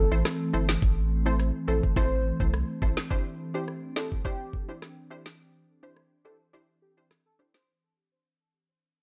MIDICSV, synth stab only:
0, 0, Header, 1, 2, 480
1, 0, Start_track
1, 0, Tempo, 571429
1, 690, Time_signature, 4, 2, 24, 8
1, 7579, End_track
2, 0, Start_track
2, 0, Title_t, "Synth stab"
2, 0, Program_c, 0, 62
2, 96, Note_on_c, 0, 60, 76
2, 96, Note_on_c, 0, 64, 70
2, 98, Note_on_c, 0, 69, 66
2, 100, Note_on_c, 0, 72, 83
2, 218, Note_off_c, 0, 60, 0
2, 219, Note_off_c, 0, 64, 0
2, 220, Note_off_c, 0, 69, 0
2, 220, Note_off_c, 0, 72, 0
2, 448, Note_on_c, 0, 60, 78
2, 450, Note_on_c, 0, 64, 71
2, 452, Note_on_c, 0, 69, 73
2, 454, Note_on_c, 0, 72, 87
2, 584, Note_off_c, 0, 60, 0
2, 585, Note_off_c, 0, 64, 0
2, 586, Note_off_c, 0, 69, 0
2, 587, Note_off_c, 0, 72, 0
2, 1055, Note_on_c, 0, 60, 81
2, 1057, Note_on_c, 0, 64, 73
2, 1059, Note_on_c, 0, 69, 70
2, 1060, Note_on_c, 0, 72, 84
2, 1382, Note_off_c, 0, 60, 0
2, 1383, Note_off_c, 0, 64, 0
2, 1384, Note_off_c, 0, 69, 0
2, 1385, Note_off_c, 0, 72, 0
2, 1408, Note_on_c, 0, 60, 73
2, 1410, Note_on_c, 0, 64, 68
2, 1411, Note_on_c, 0, 69, 70
2, 1413, Note_on_c, 0, 72, 83
2, 1631, Note_off_c, 0, 60, 0
2, 1632, Note_off_c, 0, 64, 0
2, 1633, Note_off_c, 0, 69, 0
2, 1633, Note_off_c, 0, 72, 0
2, 1648, Note_on_c, 0, 60, 90
2, 1650, Note_on_c, 0, 64, 90
2, 1652, Note_on_c, 0, 69, 86
2, 1654, Note_on_c, 0, 72, 104
2, 1784, Note_off_c, 0, 60, 0
2, 1785, Note_off_c, 0, 64, 0
2, 1786, Note_off_c, 0, 69, 0
2, 1787, Note_off_c, 0, 72, 0
2, 2014, Note_on_c, 0, 60, 74
2, 2016, Note_on_c, 0, 64, 68
2, 2018, Note_on_c, 0, 69, 68
2, 2019, Note_on_c, 0, 72, 82
2, 2138, Note_off_c, 0, 60, 0
2, 2139, Note_off_c, 0, 64, 0
2, 2139, Note_off_c, 0, 69, 0
2, 2140, Note_off_c, 0, 72, 0
2, 2367, Note_on_c, 0, 60, 78
2, 2369, Note_on_c, 0, 64, 73
2, 2371, Note_on_c, 0, 69, 71
2, 2373, Note_on_c, 0, 72, 86
2, 2504, Note_off_c, 0, 60, 0
2, 2505, Note_off_c, 0, 64, 0
2, 2506, Note_off_c, 0, 69, 0
2, 2507, Note_off_c, 0, 72, 0
2, 2608, Note_on_c, 0, 62, 95
2, 2609, Note_on_c, 0, 64, 88
2, 2611, Note_on_c, 0, 67, 84
2, 2612, Note_on_c, 0, 72, 105
2, 2946, Note_off_c, 0, 62, 0
2, 2946, Note_off_c, 0, 64, 0
2, 2947, Note_off_c, 0, 67, 0
2, 2948, Note_off_c, 0, 72, 0
2, 2975, Note_on_c, 0, 62, 75
2, 2976, Note_on_c, 0, 64, 71
2, 2978, Note_on_c, 0, 67, 67
2, 2980, Note_on_c, 0, 72, 86
2, 3302, Note_off_c, 0, 62, 0
2, 3303, Note_off_c, 0, 64, 0
2, 3304, Note_off_c, 0, 67, 0
2, 3305, Note_off_c, 0, 72, 0
2, 3327, Note_on_c, 0, 62, 79
2, 3329, Note_on_c, 0, 64, 69
2, 3331, Note_on_c, 0, 67, 69
2, 3332, Note_on_c, 0, 72, 83
2, 3551, Note_off_c, 0, 62, 0
2, 3552, Note_off_c, 0, 64, 0
2, 3553, Note_off_c, 0, 67, 0
2, 3553, Note_off_c, 0, 72, 0
2, 3567, Note_on_c, 0, 62, 98
2, 3569, Note_on_c, 0, 64, 84
2, 3571, Note_on_c, 0, 67, 89
2, 3572, Note_on_c, 0, 72, 103
2, 3704, Note_off_c, 0, 62, 0
2, 3705, Note_off_c, 0, 64, 0
2, 3706, Note_off_c, 0, 67, 0
2, 3706, Note_off_c, 0, 72, 0
2, 3935, Note_on_c, 0, 62, 76
2, 3936, Note_on_c, 0, 64, 69
2, 3938, Note_on_c, 0, 67, 67
2, 3939, Note_on_c, 0, 72, 82
2, 4058, Note_off_c, 0, 62, 0
2, 4058, Note_off_c, 0, 64, 0
2, 4060, Note_off_c, 0, 67, 0
2, 4060, Note_off_c, 0, 72, 0
2, 4287, Note_on_c, 0, 62, 76
2, 4289, Note_on_c, 0, 64, 72
2, 4291, Note_on_c, 0, 67, 70
2, 4292, Note_on_c, 0, 72, 89
2, 4424, Note_off_c, 0, 62, 0
2, 4425, Note_off_c, 0, 64, 0
2, 4426, Note_off_c, 0, 67, 0
2, 4427, Note_off_c, 0, 72, 0
2, 4895, Note_on_c, 0, 62, 79
2, 4897, Note_on_c, 0, 64, 69
2, 4898, Note_on_c, 0, 67, 71
2, 4900, Note_on_c, 0, 72, 82
2, 5222, Note_off_c, 0, 62, 0
2, 5223, Note_off_c, 0, 64, 0
2, 5224, Note_off_c, 0, 67, 0
2, 5225, Note_off_c, 0, 72, 0
2, 5248, Note_on_c, 0, 62, 75
2, 5250, Note_on_c, 0, 64, 65
2, 5251, Note_on_c, 0, 67, 71
2, 5253, Note_on_c, 0, 72, 81
2, 5471, Note_off_c, 0, 62, 0
2, 5472, Note_off_c, 0, 64, 0
2, 5473, Note_off_c, 0, 67, 0
2, 5474, Note_off_c, 0, 72, 0
2, 5487, Note_on_c, 0, 62, 94
2, 5489, Note_on_c, 0, 64, 88
2, 5491, Note_on_c, 0, 67, 85
2, 5493, Note_on_c, 0, 72, 101
2, 5624, Note_off_c, 0, 62, 0
2, 5625, Note_off_c, 0, 64, 0
2, 5626, Note_off_c, 0, 67, 0
2, 5627, Note_off_c, 0, 72, 0
2, 5856, Note_on_c, 0, 62, 75
2, 5858, Note_on_c, 0, 64, 67
2, 5859, Note_on_c, 0, 67, 66
2, 5861, Note_on_c, 0, 72, 83
2, 5978, Note_off_c, 0, 62, 0
2, 5979, Note_off_c, 0, 64, 0
2, 5980, Note_off_c, 0, 67, 0
2, 5981, Note_off_c, 0, 72, 0
2, 6208, Note_on_c, 0, 62, 80
2, 6209, Note_on_c, 0, 64, 68
2, 6211, Note_on_c, 0, 67, 69
2, 6213, Note_on_c, 0, 72, 85
2, 6344, Note_off_c, 0, 62, 0
2, 6345, Note_off_c, 0, 64, 0
2, 6346, Note_off_c, 0, 67, 0
2, 6347, Note_off_c, 0, 72, 0
2, 7579, End_track
0, 0, End_of_file